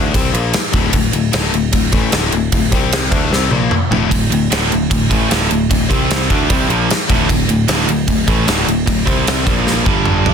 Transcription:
Already playing: picked electric bass D2, distorted electric guitar D3 A3 D4
0.13 picked electric bass C2, distorted electric guitar C3 G3 C4, kick, ride
0.32 picked electric bass A#1, distorted electric guitar A#2 F3 A#3, ride
0.53 muted distorted electric guitar stroke, snare, ride
0.72 picked electric bass D1, distorted electric guitar D2 A2 D3, kick, ride
0.93 picked electric bass D1, distorted electric guitar D2 A2, kick, ride
1.12 picked electric bass D1, distorted electric guitar D2 A2, ride
1.32 picked electric bass D1, distorted electric guitar D2 A2 D3, snare, ride
1.52 picked electric bass D1, distorted electric guitar D2 A2, ride
1.72 picked electric bass D1, distorted electric guitar D2 A2, kick, ride
1.92 picked electric bass A1, distorted electric guitar A2 E3 A3, kick, ride
2.11 picked electric bass D1, distorted electric guitar D2 A2 D3, snare, ride
2.32 picked electric bass D1, distorted electric guitar D2 A2, ride
2.52 picked electric bass D1, distorted electric guitar D2 A2, kick, ride
2.72 picked electric bass C2, distorted electric guitar C3 G3 C4, kick, ride
2.92 snare, ride
3.11 picked electric bass D2, distorted electric guitar D3 A3 D4, kick, ride
3.31 picked electric bass C2, distorted electric guitar C3 G3 C4, snare
3.51 picked electric bass A#1, distorted electric guitar A#2 F3 A#3, high tom
3.71 muted distorted electric guitar stroke, muted picked electric bass stroke, mid tom
3.91 picked electric bass D1, distorted electric guitar D2 A2 D3, floor tom
4.11 picked electric bass D1, distorted electric guitar D2 A2, kick, ride
4.31 picked electric bass D1, distorted electric guitar D2 A2, ride
4.50 picked electric bass D1, distorted electric guitar D2 A2 D3, snare, ride
4.70 picked electric bass D1, distorted electric guitar D2 A2, ride
4.90 picked electric bass D1, distorted electric guitar D2 A2, kick, ride
5.10 picked electric bass A1, distorted electric guitar A2 E3 A3, kick, ride
5.28 picked electric bass D1, distorted electric guitar D2 A2 D3, snare, ride
5.50 picked electric bass D1, distorted electric guitar D2 A2, ride
5.70 picked electric bass D1, distorted electric guitar D2 A2, kick, ride
5.89 picked electric bass C2, distorted electric guitar C3 G3 C4, kick, ride
6.11 snare, ride
6.30 picked electric bass D2, distorted electric guitar D3 A3 D4, kick, ride
6.50 picked electric bass C2, distorted electric guitar C3 G3 C4, kick, ride
6.69 picked electric bass A#1, distorted electric guitar A#2 F3 A#3, ride
6.89 muted distorted electric guitar stroke, snare, ride
7.08 picked electric bass D1, distorted electric guitar D2 A2 D3, kick, ride
7.29 picked electric bass D1, distorted electric guitar D2 A2, kick, ride
7.48 picked electric bass D1, distorted electric guitar D2 A2, ride
7.68 picked electric bass D1, distorted electric guitar D2 A2 D3, snare, ride
7.88 picked electric bass D1, distorted electric guitar D2 A2, ride
8.08 picked electric bass D1, distorted electric guitar D2 A2, kick, ride
8.27 picked electric bass A1, distorted electric guitar A2 E3 A3, kick, ride
8.46 picked electric bass D1, distorted electric guitar D2 A2 D3, snare, ride
8.65 picked electric bass D1, distorted electric guitar D2 A2, ride
8.86 picked electric bass D1, distorted electric guitar D2 A2, kick, ride
9.06 picked electric bass C2, distorted electric guitar C3 G3 C4, kick, ride
9.27 snare, ride
9.46 picked electric bass A#1, distorted electric guitar A#2 F3 A#3, kick, ride
9.67 snare
9.86 picked electric bass G1, distorted electric guitar G2 D3 G3, kick
10.05 mid tom
10.26 floor tom

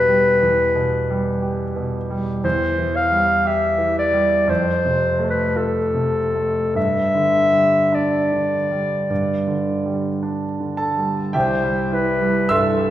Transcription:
Already playing: grand piano E2 B2 G3 G4, clarinet B4
0.09 grand piano G3
0.43 grand piano E2
0.75 grand piano B2
1.10 grand piano G3
1.42 grand piano G4
1.76 grand piano B2
2.10 grand piano G3
2.44 grand piano E2, clarinet C5
2.78 grand piano E3
2.96 clarinet F5
3.11 grand piano G3
3.45 grand piano G4, clarinet E5
3.78 grand piano E3
3.99 clarinet D5
4.13 grand piano G3
4.47 grand piano F2, clarinet C5
4.85 grand piano C3
5.19 grand piano A3
5.30 clarinet B4
5.56 grand piano F4, clarinet A4
5.94 grand piano C3
6.35 grand piano A3
6.75 grand piano G2, clarinet E5
7.15 grand piano D3
7.53 grand piano G3
7.92 grand piano D4, clarinet D5
8.32 grand piano D3
8.71 grand piano G3
9.10 grand piano G2
9.47 grand piano D3
9.85 grand piano G3
10.23 grand piano D4
10.60 grand piano D3
10.77 grand piano A4 A5
10.98 grand piano G3
11.33 grand piano C2 G4 E5 G5, clarinet C5
11.63 grand piano G3
11.92 grand piano E4, clarinet B4
12.21 grand piano G3
12.49 grand piano G2 E5 C6 E6, clarinet A4
12.78 grand piano G3

